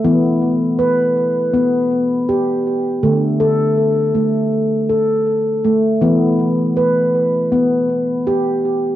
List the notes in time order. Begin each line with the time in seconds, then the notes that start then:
0.04 E3 B3
0.79 B4
1.54 B3
2.29 G4
3.03 D3 A3
3.40 A4
4.15 A3
4.89 A4
5.64 A3
6.01 E3 B3
6.77 B4
7.52 B3
8.27 G4